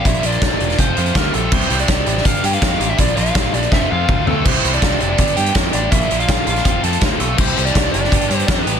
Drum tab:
CC |----------------|x---------------|----------------|x---------------|
HH |xxxxx-xxx-xxx-x-|-xxxx-x-x-xxx-x-|xxxxx-xx--------|-xxxx-x-xxxxx-x-|
SD |----o--o----o---|----o--o----o---|----o---o-------|----o-------o---|
T2 |----------------|----------------|------------o---|----------------|
FT |----------------|----------------|--------------o-|----------------|
BD |o---o---o---o---|o---o---o---o---|o---o---o---o---|o---o---o---o---|

CC |----------------|x---------------|
HH |x-xxx-xxx-xxx-x-|-xxxx-x-xxxxx-x-|
SD |----o--o----o---|----o--o----o---|
T2 |----------------|----------------|
FT |----------------|----------------|
BD |o---o---o---o---|o---o---o---o---|